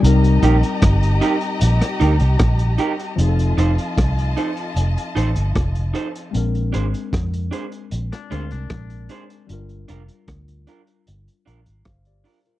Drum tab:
HH |xxxxxxxxxxxxxxxx|xxxxxxxxxxxxxxxx|xxxxxxxxxxxxxxxx|xxxxxxxxxxxxxxox|
SD |----r----r--r---|----r-------r---|----r----r--r---|----r-------r---|
BD |----o-------o---|----o-------o---|----o-------o---|----o-------o---|